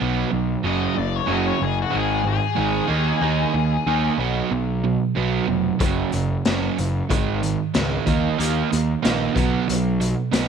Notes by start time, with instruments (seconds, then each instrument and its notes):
0.00 picked electric bass B1, overdriven electric guitar B2 F#3 B3
0.31 picked electric bass B1, overdriven electric guitar B2 F#3
0.63 picked electric bass F#1, overdriven electric guitar F#2 C#3 F#3 D#5
0.95 picked electric bass F#1, overdriven electric guitar F#2 C#3 D5
1.16 overdriven electric guitar C#5
1.26 picked electric bass F#1, overdriven electric guitar F#2 C#3 F#3
1.32 overdriven electric guitar D#5
1.47 overdriven electric guitar C#5
1.59 picked electric bass F#1, overdriven electric guitar F#2 C#3 G#4
1.82 overdriven electric guitar F#4
1.90 picked electric bass G#1, overdriven electric guitar G#2 D#3 G#3
1.98 overdriven electric guitar G#4
2.24 overdriven electric guitar G#2 D#3
2.28 overdriven electric guitar G#4
2.56 picked electric bass G#1, overdriven electric guitar G#2 D#3 G#3
2.87 picked electric bass D#2, overdriven electric guitar D#3 A#3 D#4
3.21 picked electric bass D#2, overdriven electric guitar D#3 A#3 D#4
3.54 picked electric bass D#2, overdriven electric guitar D#3 A#3
3.86 picked electric bass D#2, overdriven electric guitar D#3 A#3 D#4
4.18 picked electric bass B1, overdriven electric guitar B2 F#3 B3
4.51 picked electric bass B1, overdriven electric guitar B2 F#3
4.84 overdriven electric guitar B2 F#3
5.15 picked electric bass B1, overdriven electric guitar B2 F#3 B3
5.47 picked electric bass F1, overdriven electric guitar B2 F#3
5.79 picked electric bass F#1, overdriven electric guitar F#2 C#3 F#3, kick, closed hi-hat
6.12 picked electric bass F#1, overdriven electric guitar F#2 C#3, closed hi-hat
6.45 picked electric bass F#1, overdriven electric guitar F#2 C#3 F#3, snare, closed hi-hat
6.78 picked electric bass F#1, overdriven electric guitar F#2 C#3, closed hi-hat
7.09 picked electric bass G#1, overdriven electric guitar G#2 D#3 G#3, kick, closed hi-hat
7.42 overdriven electric guitar G#2 D#3, closed hi-hat
7.74 picked electric bass C#2, overdriven electric guitar G#2 D#3 G#3, snare, closed hi-hat
8.06 picked electric bass D#2, overdriven electric guitar D#3 A#3 D#4, kick, closed hi-hat
8.38 picked electric bass D#2, overdriven electric guitar D#3 A#3 D#4, closed hi-hat
8.71 picked electric bass D#2, overdriven electric guitar D#3 A#3, closed hi-hat
9.02 picked electric bass A#1, overdriven electric guitar D#3 A#3 D#4, snare, closed hi-hat
9.34 picked electric bass B1, overdriven electric guitar B2 F#3 B3, kick, closed hi-hat
9.68 picked electric bass B1, overdriven electric guitar B2 F#3, closed hi-hat
10.00 overdriven electric guitar B2 F#3, closed hi-hat
10.31 picked electric bass B1, overdriven electric guitar B2 F#3 B3, snare, closed hi-hat